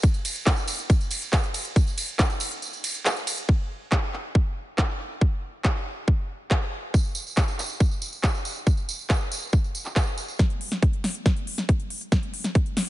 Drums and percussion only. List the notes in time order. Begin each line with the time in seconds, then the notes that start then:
0.02 kick, closed hi-hat, tambourine
0.14 closed hi-hat, tambourine
0.25 open hi-hat, ride, tambourine
0.36 closed hi-hat, tambourine
0.46 kick, clap, closed hi-hat, tambourine
0.56 closed hi-hat, tambourine
0.67 open hi-hat, ride, tambourine
0.79 closed hi-hat, tambourine
0.90 kick, closed hi-hat, tambourine
1.00 closed hi-hat, tambourine
1.11 open hi-hat, ride, tambourine
1.22 closed hi-hat, tambourine
1.33 kick, clap, closed hi-hat, tambourine
1.44 closed hi-hat, tambourine
1.54 open hi-hat, ride, tambourine
1.65 closed hi-hat, tambourine
1.76 kick, closed hi-hat, tambourine
1.87 closed hi-hat, tambourine
1.98 open hi-hat, ride, tambourine
2.08 closed hi-hat, tambourine
2.19 kick, clap, closed hi-hat, tambourine
2.30 closed hi-hat, tambourine
2.40 open hi-hat, ride, tambourine
2.51 closed hi-hat, tambourine
2.62 closed hi-hat, tambourine
2.73 closed hi-hat, tambourine
2.84 open hi-hat, ride, tambourine
2.95 closed hi-hat, tambourine
3.06 clap, closed hi-hat, tambourine
3.16 closed hi-hat, tambourine
3.27 open hi-hat, ride, tambourine
3.38 closed hi-hat, tambourine
3.49 kick
3.92 kick, clap
4.13 clap
4.35 kick
4.78 kick, clap
5.21 kick
5.65 kick, clap
6.08 kick
6.51 kick, clap
6.94 kick, tambourine
7.05 tambourine
7.15 tambourine
7.27 tambourine
7.37 kick, clap, tambourine
7.48 tambourine
7.59 clap, tambourine
7.70 tambourine
7.80 kick, tambourine
7.91 tambourine
8.02 tambourine
8.13 tambourine
8.23 kick, clap, tambourine
8.34 tambourine
8.45 tambourine
8.56 tambourine
8.67 kick, tambourine
8.77 tambourine
8.89 tambourine
8.99 tambourine
9.10 kick, clap, tambourine
9.21 tambourine
9.32 tambourine
9.42 tambourine
9.53 kick, tambourine
9.64 tambourine
9.75 tambourine
9.85 clap, tambourine
9.96 kick, clap, tambourine
10.07 tambourine
10.18 tambourine
10.28 tambourine
10.39 kick, snare, closed hi-hat
10.50 closed hi-hat
10.61 open hi-hat
10.72 snare, closed hi-hat
10.82 kick, closed hi-hat
10.93 closed hi-hat
11.04 snare, open hi-hat
11.15 closed hi-hat
11.26 kick, snare, closed hi-hat
11.36 closed hi-hat
11.47 open hi-hat
11.58 snare, closed hi-hat
11.69 kick, closed hi-hat
11.80 closed hi-hat
11.90 open hi-hat
12.01 closed hi-hat
12.12 kick, snare, closed hi-hat
12.23 closed hi-hat
12.34 open hi-hat
12.44 snare, closed hi-hat
12.55 kick, closed hi-hat
12.66 closed hi-hat
12.77 snare, open hi-hat